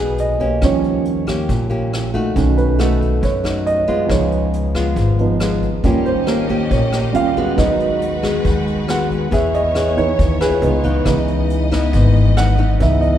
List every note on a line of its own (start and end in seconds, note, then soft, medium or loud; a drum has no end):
0.00 0.58 B1 medium
0.00 0.60 B2 soft
0.00 0.64 F#3 soft
0.00 0.64 G#3 soft
0.00 0.37 B3 medium
0.00 0.37 D#4 medium
0.00 0.64 D#4 soft
0.00 0.37 G#4 medium
0.00 0.64 G#4 medium
0.00 0.64 A4 medium
0.00 0.17 B4 soft
0.18 0.60 D#5 medium
0.18 closed hi-hat soft
0.40 1.24 A#3 medium
0.40 1.24 C#4 medium
0.40 1.24 G4 medium
0.40 kick soft
0.40 closed hi-hat soft
0.62 1.45 D#2 medium
0.62 1.47 D#3 soft
0.62 0.91 F3 soft
0.62 0.92 G3 soft
0.62 0.92 C#4 soft
0.62 1.04 C#5 medium
0.62 kick medium
0.62 cross-stick medium
0.62 closed hi-hat soft
0.84 closed hi-hat soft
1.05 closed hi-hat soft
1.27 1.67 A#3 medium
1.27 1.67 C#4 medium
1.27 1.68 G4 medium
1.27 kick soft
1.27 cross-stick medium
1.27 closed hi-hat soft
1.49 2.32 A#1 medium
1.49 2.34 A#2 medium
1.49 kick medium
1.49 closed hi-hat soft
1.70 2.10 A#3 medium
1.70 2.11 C#4 medium
1.70 2.11 G4 medium
1.70 closed hi-hat soft
1.93 cross-stick medium
1.93 closed hi-hat soft
2.14 2.78 A3 medium
2.14 2.78 D#4 medium
2.14 2.78 F#4 medium
2.14 kick soft
2.14 closed hi-hat soft
2.35 3.19 B1 medium
2.35 3.21 B2 soft
2.35 2.65 D#3 soft
2.35 2.65 A3 soft
2.35 2.65 C#4 soft
2.35 kick medium
2.35 closed hi-hat soft
2.58 2.79 B4 medium
2.58 closed hi-hat soft
2.79 3.22 A3 medium
2.79 3.22 D#4 medium
2.79 3.23 F#4 medium
2.79 3.20 A4 medium
2.79 cross-stick medium
2.79 closed hi-hat soft
3.01 kick soft
3.01 closed hi-hat soft
3.21 4.07 F#2 medium
3.21 4.06 F#2 medium
3.21 3.64 C#5 medium
3.21 kick medium
3.21 closed hi-hat soft
3.44 3.84 A3 medium
3.44 3.85 D#4 medium
3.44 3.85 F#4 medium
3.44 cross-stick medium
3.44 closed hi-hat soft
3.67 4.07 D#5 medium
3.67 closed hi-hat soft
3.88 4.71 G#3 medium
3.88 4.71 B3 medium
3.88 4.72 F4 medium
3.88 kick soft
3.88 closed hi-hat soft
4.06 4.93 C#2 medium
4.06 4.95 C#3 soft
4.06 5.18 F3 soft
4.06 5.18 B3 soft
4.06 5.18 D#4 soft
4.06 4.50 C#5 medium
4.06 kick medium
4.06 cross-stick medium
4.06 closed hi-hat soft
4.32 closed hi-hat soft
4.53 closed hi-hat soft
4.75 5.37 G#3 medium
4.75 5.37 B3 medium
4.75 5.37 F4 medium
4.75 kick soft
4.75 cross-stick medium
4.75 closed hi-hat soft
4.96 5.79 G#1 medium
4.96 5.81 G#2 medium
4.96 kick medium
4.96 closed hi-hat soft
5.19 5.39 F3 soft
5.19 5.38 B3 soft
5.19 5.39 D#4 soft
5.19 closed hi-hat soft
5.40 5.68 G#3 medium
5.40 5.69 B3 medium
5.40 5.69 F4 medium
5.40 cross-stick medium
5.40 closed hi-hat soft
5.62 kick soft
5.62 closed hi-hat soft
5.84 6.67 D#2 medium
5.84 6.69 D#3 soft
5.84 6.46 G3 soft
5.84 6.12 A#3 medium
5.84 7.12 C#4 medium
5.84 6.46 C#4 soft
5.84 6.12 C#4 medium
5.84 6.46 F4 soft
5.84 7.56 G4 medium
5.84 6.12 G4 medium
5.84 7.56 D#5 medium
5.84 kick medium
5.84 closed hi-hat soft
6.05 6.27 C5 medium
6.05 closed hi-hat soft
6.27 6.46 A#3 medium
6.27 6.46 C#4 medium
6.27 6.46 G4 medium
6.27 6.68 A#4 medium
6.27 cross-stick medium
6.27 closed hi-hat soft
6.49 6.89 A#3 medium
6.49 6.89 C#4 medium
6.49 6.90 G4 medium
6.49 kick soft
6.49 closed hi-hat soft
6.71 7.11 A#1 medium
6.71 7.13 A#2 soft
6.71 7.11 C#5 medium
6.71 kick medium
6.71 closed hi-hat soft
6.92 7.33 A#3 medium
6.92 7.33 C#4 medium
6.92 7.33 G4 medium
6.92 cross-stick medium
6.92 closed hi-hat soft
7.12 7.55 D#2 medium
7.12 7.42 G3 soft
7.12 7.57 C#4 medium
7.12 7.43 C#4 soft
7.12 7.43 F4 soft
7.12 7.55 F5 medium
7.12 closed hi-hat soft
7.36 8.20 G#3 medium
7.36 8.20 B3 medium
7.36 8.20 F#4 medium
7.36 kick soft
7.36 closed hi-hat soft
7.57 8.41 D#2 medium
7.57 8.43 D#3 medium
7.57 9.27 F#3 soft
7.57 9.30 G#3 medium
7.57 9.28 B3 soft
7.57 9.28 D#4 soft
7.57 9.30 F#4 medium
7.57 9.30 B4 medium
7.57 7.99 D#5 medium
7.57 kick medium
7.57 cross-stick medium
7.57 closed hi-hat soft
7.80 closed hi-hat soft
8.02 closed hi-hat soft
8.23 8.85 G#3 medium
8.23 8.85 B3 medium
8.23 8.85 F#4 medium
8.23 kick soft
8.23 cross-stick medium
8.23 closed hi-hat soft
8.44 9.28 D#2 medium
8.44 9.30 D#3 soft
8.44 kick medium
8.44 closed hi-hat soft
8.67 closed hi-hat soft
8.88 9.30 G#3 medium
8.88 9.30 B3 medium
8.88 9.31 F#4 medium
8.88 9.30 F#5 medium
8.88 cross-stick medium
8.88 closed hi-hat soft
9.10 kick soft
9.10 closed hi-hat soft
9.31 10.15 E2 medium
9.31 10.17 E3 medium
9.31 9.60 B3 medium
9.31 11.05 B3 medium
9.31 9.60 C#4 medium
9.31 9.60 G#4 medium
9.31 10.61 C#5 medium
9.31 9.54 E5 medium
9.31 kick medium
9.31 closed hi-hat soft
9.54 9.95 D#5 medium
9.54 closed hi-hat soft
9.75 10.37 B3 medium
9.75 10.37 C#4 medium
9.75 10.38 G#4 medium
9.75 cross-stick medium
9.75 closed hi-hat soft
9.97 10.26 E3 soft
9.97 10.26 B3 soft
9.97 10.27 D#4 soft
9.97 10.38 C#5 medium
9.97 kick soft
9.97 closed hi-hat soft
10.19 10.60 D#2 medium
10.19 kick medium
10.19 closed hi-hat soft
10.41 10.81 B3 medium
10.41 10.81 F4 medium
10.41 10.81 G#4 medium
10.41 11.02 B4 medium
10.41 cross-stick medium
10.41 closed hi-hat soft
10.62 11.03 C#2 medium
10.62 11.04 B3 soft
10.62 11.04 D#4 soft
10.62 11.06 F4 medium
10.62 11.06 C#5 medium
10.62 closed hi-hat soft
10.84 11.68 E3 medium
10.84 11.68 B3 medium
10.84 11.68 D#4 medium
10.84 kick soft
10.84 closed hi-hat soft
11.05 11.89 C#2 medium
11.05 11.91 C#3 medium
11.05 11.35 E3 soft
11.05 11.35 B3 soft
11.05 12.78 B3 medium
11.05 11.35 D#4 soft
11.05 12.78 D#5 medium
11.05 kick medium
11.05 cross-stick medium
11.05 closed hi-hat soft
11.28 closed hi-hat soft
11.50 closed hi-hat soft
11.72 12.33 E3 medium
11.72 12.34 B3 medium
11.72 12.34 D#4 medium
11.72 kick soft
11.72 cross-stick medium
11.72 closed hi-hat soft
11.93 12.76 G#1 medium
11.93 12.78 G#2 medium
11.93 kick medium
11.93 closed hi-hat soft
12.16 closed hi-hat soft
12.37 12.55 E3 medium
12.37 12.55 B3 medium
12.37 12.56 D#4 medium
12.37 12.78 F#5 medium
12.37 cross-stick medium
12.37 closed hi-hat soft
12.58 13.18 E3 medium
12.58 13.18 B3 medium
12.58 13.18 D#4 medium
12.58 kick soft
12.58 closed hi-hat soft
12.79 13.18 C#2 medium
12.79 13.18 C#3 soft
12.79 13.18 E3 soft
12.79 13.18 B3 medium
12.79 13.18 B3 soft
12.79 13.18 D#4 soft
12.79 13.18 D#5 medium
12.79 13.02 E5 medium
12.79 kick medium
12.79 closed hi-hat soft
13.01 13.18 D#5 medium
13.01 closed hi-hat soft